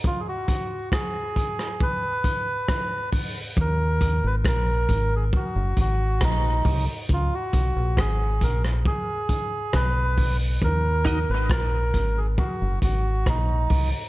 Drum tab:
HH |p-x---x---x---o-|p-x---x---x---o-|p-x---x---x---o-|p-x---x---x---o-|
SD |----r--r----r---|----r-------r---|----r--r----r---|----r-------r---|
BD |o-o-o-o-o-o-o-o-|o-o-o-o-o-o-o-o-|o-o-o-o-o-o-o-o-|o-o-o-o-o-o-o-o-|